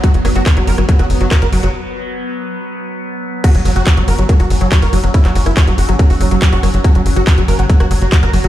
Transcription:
<<
  \new Staff \with { instrumentName = "Synth drone" } { \time 4/4 \tempo 4 = 141 <fis b>1~ | <fis b>1 | <fis cis'>1~ | <fis cis'>1 |
fis'1 | }
  \new Staff \with { instrumentName = "Supersaw synth" } { \clef bass \time 4/4 fis'16 fis16 fis16 fis'16 fis16 fis16 ais'16 fis16 fis16 fis'16 fis16 fis16 fis16 ais'16 fis16 fis16 | r1 | fis'16 fis16 fis16 fis'16 fis16 fis16 ais'16 fis16 fis16 fis'16 fis16 fis16 fis16 ais'16 fis16 fis16 | e'16 fis16 fis16 e'16 fis16 fis16 fis'16 fis16 fis16 fis'16 fis16 fis16 fis16 fis'16 fis16 fis16 |
fis'16 fis16 fis16 fis'16 fis16 fis16 ais'16 fis16 fis16 fis'16 fis16 fis16 fis16 ais'16 fis16 fis16 | }
  \new Staff \with { instrumentName = "Synth arpeggio sound" } { \clef bass \time 4/4 fis16 r16 fis16 fis16 r16 fis16 fis16 r16 fis16 fis16 r16 fis16 fis16 r16 fis16 fis16 | r1 | fis16 r16 fis16 fis16 r16 fis16 fis16 r16 fis16 fis16 r16 fis16 fis16 r16 fis16 fis16 | r16 fis16 fis16 r16 fis16 fis16 r16 fis16 fis16 r16 fis16 fis16 r16 fis16 fis16 r16 |
fis16 fis16 r16 fis16 fis16 r16 fis16 fis16 r16 fis16 fis16 r16 fis16 fis16 r16 fis16 | }
  \new Staff \with { instrumentName = "Analog synth bass" } { \clef bass \time 4/4 r16 fis,,16 fis,,16 fis,,16 r16 fis,,16 fis,,16 g,,16 r16 fis,,16 fis,,16 fis,,16 r16 fis,,16 fis,,16 fis,,16 | r1 | r16 fis,,16 fis,,16 fis,,16 r16 fis,,16 fis,,16 g,,16 r16 fis,,16 fis,,16 fis,,16 r16 fis,,16 fis,,16 fis,,16 | r16 fis,,16 fis,,16 fis,,16 r16 fis,,16 fis,,16 g,,16 r16 fis,,16 fis,,16 fis,,16 r16 fis,,16 fis,,16 fis,,16 |
r16 fis,,16 fis,,16 fis,,16 r16 fis,,16 fis,,16 g,,16 r16 fis,,16 fis,,16 fis,,16 r16 fis,,16 fis,,16 fis,,16 | }
  \new DrumStaff \with { instrumentName = "Drums" } \drummode { \time 4/4 <hh bd>16 hh16 <hho ss>16 hh16 <hc hh bd ss>16 hh16 hho16 <hh ss>16 <hh bd>16 <hh ss>16 hho16 hh16 <hc hh bd ss>16 hh16 <hho ss>16 hh16 | r4 r4 r4 r4 | <cymc hh bd>16 hh16 <hho ss>16 hh16 <hc hh bd>16 hh16 hho16 hh16 <hh bd ss>16 hh16 hho16 hh16 <hc hh bd>16 <hh ss>16 hho16 hh16 | <hh bd>16 <hc hh>16 hho16 <hh ss>16 <hc hh bd>16 hh16 hho16 hh16 <hh bd ss>16 hho16 hho16 hh16 <hc hh bd>16 hh16 <hho ss>16 hh16 |
<hh bd>16 hh16 hho16 <hh ss>16 <hc hh bd>16 hh16 hho16 hh16 <hh bd>16 <hh ss>16 hho16 hh16 <hc hh bd>16 hh16 <hho ss>16 hh16 | }
>>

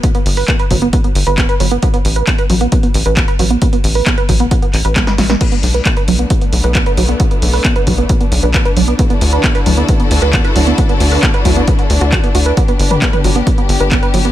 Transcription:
<<
  \new Staff \with { instrumentName = "String section" } { \time 4/4 \key b \minor \tempo 4 = 134 r1 | r1 | r1 | <a b d'>1~ |
<a b d'>1 | <d e' fis' a'>1~ | <d e' fis' a'>1 | <b g'>1 | }
  \new Staff \with { instrumentName = "Synth arpeggio sound" } { \time 4/4 \key b \minor b16 b16 r16 b'16 b16 b'16 fis16 b16 b16 b16 r16 b'16 b16 b'16 fis16 b16 | b16 b16 r16 b'16 b16 b'16 fis16 b16 b16 b16 r16 b'16 b16 b'16 fis16 b16 | b16 b16 r16 b'16 b16 b'16 fis16 b16 b16 b16 r16 b'16 b16 b'16 fis16 b16 | b16 b16 r16 b'16 b16 b'16 fis16 b16 b16 b16 r16 b'16 b16 b'16 fis16 b16 |
b16 b16 r16 b'16 b16 b'16 fis16 b16 b16 b16 r16 b'16 b16 b'16 fis16 b16 | b16 b16 r16 b'16 b16 b'16 fis16 b16 b16 b16 r16 b'16 b16 b'16 fis16 b16 | b16 b16 r16 b'16 b16 b'16 fis16 b16 b16 b16 r16 fis'16 fis'16 b16 fis'16 b'16 | b16 b16 r16 b'16 b16 b'16 fis16 b16 b16 b16 r16 b'16 b16 b'16 fis16 b16 | }
  \new Staff \with { instrumentName = "Analog synth bass" } { \clef bass \time 4/4 \key b \minor r8 g,,8 r8 g,,8 r8 g,,16 g,,8 r16 g,,8 | r8 a,,8 r8 a,,8 r8 a,,16 a,,8 r16 a,,8 | r8 a,,8 r8 a,,8 r8 a,,16 a,,8 r16 a,,8 | r8 b,,8 r8 b,,8 r8 b,,16 b,,8 r16 b,,8 |
r8 b,,8 r8 b,,8 r8 b,,16 b,,8 r16 b,,8 | r8 d,8 r8 d,8 r8 d,16 d,8 r16 d,8 | r8 d,8 r8 d,8 r8 d,16 d,8 r16 d,8 | r8 g,,8 r8 g,,8 r8 g,,16 g,,8 r16 g,,8 | }
  \new DrumStaff \with { instrumentName = "Drums" } \drummode { \time 4/4 <hh bd>16 hh16 hho16 hho16 <hc hh bd>16 hh16 <hho bd>16 hh16 <hh bd>16 hh16 hho16 hh16 <hc hh bd>16 hh16 hho16 hh16 | <hh bd>16 hh16 hho16 hh16 <hc hh bd>16 hh16 hho16 hh16 <hh bd>16 hh16 hho16 hh16 <hc hh bd>16 hh16 hho16 hh16 | <hh bd>16 hh16 hho16 hho16 <hc hh bd>16 hh16 <hho bd>16 hh16 <hh bd>16 hh16 <hc hho>16 hh16 <hc hh bd sn>16 <hh sn>16 <hho sn>16 sn16 | <cymc hh bd>16 hh16 hho16 hh16 <hc hh bd>16 hh16 hho16 hh16 <hh bd>16 hh16 hho16 hh16 <hc hh bd>16 hh16 hho16 hh16 |
<hh bd>16 hh16 hho16 hho16 <hc hh bd>16 hh16 <hho bd>16 hh16 <hh bd>16 hh16 hho16 hh16 <hc hh bd>16 hh16 hho16 hh16 | <hh bd>16 hh16 hho16 hh16 <hc hh bd>16 hh16 hho16 hh16 <hh bd>16 hh16 hho16 hh16 <hc hh bd>16 hh16 hho16 hh16 | <hh bd>16 hh16 hho16 hho16 <hc hh bd>16 hh16 <hho bd>16 hh16 <hh bd>16 hh16 hho16 hh16 <hc hh bd>16 hh16 hho16 hh16 | <hh bd>16 hh16 hho16 <hh toml>16 <hc hh bd>16 <hh toml>16 hho16 hh16 <hh bd>16 hh16 hho16 hh16 <hc hh bd>16 hh16 hho16 hh16 | }
>>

